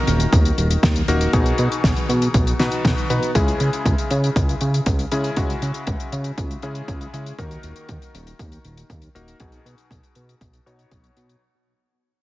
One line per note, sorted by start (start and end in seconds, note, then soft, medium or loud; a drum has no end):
0.00 1.05 D#3 medium
0.00 1.05 A#3 medium
0.00 1.05 D#4 medium
0.00 1.05 F#4 medium
0.00 1.05 A#4 medium
0.07 0.27 D#1 loud
0.07 closed hi-hat medium
0.20 closed hi-hat medium
0.33 0.52 D#2 medium
0.33 kick loud
0.33 closed hi-hat medium
0.45 closed hi-hat soft
0.58 0.77 D#1 medium
0.58 closed hi-hat medium
0.71 closed hi-hat medium
0.83 1.02 D#2 loud
0.83 kick loud
0.83 snare loud
0.83 closed hi-hat loud
0.96 closed hi-hat medium
1.08 1.27 D#1 medium
1.08 1.30 A#3 medium
1.08 1.30 D#4 medium
1.08 1.30 F#4 medium
1.08 1.30 A#4 loud
1.08 closed hi-hat medium
1.21 closed hi-hat medium
1.33 1.53 B1 medium
1.33 2.56 B2 medium
1.33 2.56 B3 medium
1.33 2.56 D#4 medium
1.33 2.56 F#4 medium
1.33 2.56 G#4 medium
1.33 kick loud
1.33 closed hi-hat medium
1.46 closed hi-hat medium
1.58 1.68 B2 medium
1.58 closed hi-hat medium
1.72 closed hi-hat medium
1.84 1.93 B1 loud
1.84 kick loud
1.84 snare loud
1.84 closed hi-hat medium
1.96 closed hi-hat soft
2.09 2.28 B2 loud
2.09 closed hi-hat medium
2.22 closed hi-hat medium
2.34 2.53 B1 medium
2.34 kick loud
2.34 closed hi-hat medium
2.47 closed hi-hat medium
2.59 3.07 B2 medium
2.59 2.69 B2 medium
2.59 3.07 B3 medium
2.59 3.07 D#4 medium
2.59 3.07 F#4 medium
2.59 3.07 B4 medium
2.59 snare medium
2.59 closed hi-hat medium
2.72 closed hi-hat soft
2.85 2.94 B1 loud
2.85 kick loud
2.85 snare loud
2.85 closed hi-hat loud
2.98 closed hi-hat medium
3.10 3.19 B2 medium
3.10 3.29 B3 medium
3.10 3.29 D#4 medium
3.10 3.29 F#4 medium
3.10 3.29 B4 medium
3.10 closed hi-hat medium
3.23 closed hi-hat medium
3.35 3.54 C#2 medium
3.35 5.09 C#3 medium
3.35 5.09 G#3 medium
3.35 5.09 C#4 medium
3.35 5.09 E4 medium
3.35 5.09 G#4 medium
3.35 kick loud
3.35 closed hi-hat loud
3.48 closed hi-hat medium
3.60 3.70 C#3 medium
3.60 closed hi-hat medium
3.73 closed hi-hat medium
3.85 3.95 C#2 loud
3.85 kick loud
3.85 closed hi-hat medium
3.98 closed hi-hat medium
4.11 4.30 C#3 loud
4.11 closed hi-hat medium
4.24 closed hi-hat soft
4.36 4.55 C#2 medium
4.36 kick loud
4.36 closed hi-hat loud
4.49 closed hi-hat soft
4.61 4.80 C#3 medium
4.61 closed hi-hat soft
4.74 closed hi-hat soft
4.86 5.06 C#2 loud
4.86 kick loud
4.86 closed hi-hat loud
4.99 closed hi-hat medium
5.12 5.34 C#3 medium
5.12 5.31 C#3 medium
5.12 5.34 G#3 medium
5.12 5.34 C#4 medium
5.12 5.34 E4 medium
5.12 5.34 G#4 medium
5.12 closed hi-hat medium
5.24 closed hi-hat soft
5.36 5.56 C#2 loud
5.36 6.60 C#3 medium
5.36 6.60 G#3 medium
5.36 6.60 C#4 medium
5.36 6.60 E4 medium
5.36 6.60 F#4 medium
5.36 kick loud
5.36 closed hi-hat medium
5.50 closed hi-hat soft
5.62 5.72 C#3 medium
5.62 closed hi-hat medium
5.74 closed hi-hat medium
5.87 5.97 C#2 medium
5.87 kick loud
5.87 closed hi-hat medium
6.00 closed hi-hat medium
6.12 6.32 C#3 loud
6.12 closed hi-hat medium
6.24 closed hi-hat medium
6.38 6.57 C#2 medium
6.38 kick loud
6.38 closed hi-hat medium
6.51 closed hi-hat soft
6.62 6.82 C#3 medium
6.62 7.10 C#3 medium
6.62 7.10 G#3 medium
6.62 7.10 C#4 medium
6.62 7.10 E4 medium
6.62 7.10 G#4 medium
6.62 closed hi-hat soft
6.75 closed hi-hat soft
6.88 7.07 C#2 loud
6.88 kick loud
6.88 closed hi-hat loud
7.01 closed hi-hat medium
7.13 7.33 C#3 medium
7.13 7.32 G#3 medium
7.13 7.33 C#4 medium
7.13 7.32 E4 medium
7.13 7.32 G#4 medium
7.13 closed hi-hat medium
7.26 closed hi-hat medium
7.39 7.58 D#2 loud
7.39 9.12 D#3 medium
7.39 9.12 A#3 medium
7.39 9.12 D#4 medium
7.39 9.12 F#4 medium
7.39 9.12 A#4 medium
7.39 kick loud
7.39 closed hi-hat medium
7.51 closed hi-hat medium
7.63 7.73 D#1 medium
7.63 closed hi-hat medium
7.76 closed hi-hat medium
7.89 7.99 D#2 loud
7.89 kick loud
7.89 closed hi-hat medium
8.02 closed hi-hat medium
8.14 8.33 D#1 medium
8.14 closed hi-hat medium
8.27 closed hi-hat medium
8.39 8.59 D#2 medium
8.39 kick loud
8.39 closed hi-hat medium
8.52 closed hi-hat soft
8.65 8.84 D#1 medium
8.65 closed hi-hat soft
8.77 closed hi-hat medium
8.90 9.09 D#2 loud
8.90 kick loud
8.90 closed hi-hat medium
9.02 closed hi-hat soft
9.15 9.34 D#1 medium
9.15 9.37 A#3 medium
9.15 9.37 D#4 medium
9.15 9.37 F#4 medium
9.15 9.37 A#4 medium
9.15 closed hi-hat medium
9.28 closed hi-hat medium
9.40 9.59 B1 loud
9.40 10.63 B2 medium
9.40 10.63 B3 medium
9.40 10.63 D#4 medium
9.40 10.63 F#4 medium
9.40 10.63 G#4 medium
9.40 kick loud
9.40 closed hi-hat loud
9.52 closed hi-hat medium
9.66 9.75 B2 medium
9.66 closed hi-hat medium
9.78 closed hi-hat medium
9.91 10.00 B1 medium
9.91 kick loud
9.91 closed hi-hat loud
10.03 closed hi-hat soft
10.15 10.35 B2 loud
10.15 closed hi-hat medium
10.29 closed hi-hat medium
10.41 10.60 B1 medium
10.41 kick loud
10.41 closed hi-hat loud
10.53 closed hi-hat medium
10.66 11.39 B2 medium
10.66 10.85 B2 loud
10.66 11.39 B3 medium
10.66 11.39 D#4 medium
10.66 11.39 F#4 medium
10.66 11.39 C#5 medium
10.66 closed hi-hat soft
10.79 closed hi-hat soft
10.91 11.11 B1 loud
10.91 kick loud
10.91 closed hi-hat loud
11.04 closed hi-hat medium
11.17 11.36 B2 medium
11.17 closed hi-hat medium
11.29 closed hi-hat soft